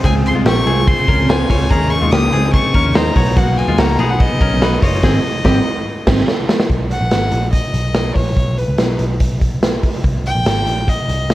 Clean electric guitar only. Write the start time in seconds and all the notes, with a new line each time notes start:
0.04 C4 G#4
0.35 G#3 F4
0.46 C4 G4
0.67 C4 G#4
1.09 C#4 A#4
1.29 F4 C5
1.50 F4 C#5
1.71 C#4 G#4
2.02 G#3 F4
2.12 A#3 G4
2.33 C4 G#4
2.75 C#4 A#4
2.96 D#4 C5
3.17 F#4 C#5
3.38 A#3 F#4
3.68 G#3 F4
3.79 A#3 F#4
4.00 B3 G#4
4.42 C#4 A#4
4.63 D#4 B4
4.83 F4 C#5
5.04 C4 G#4
5.45 C4 G4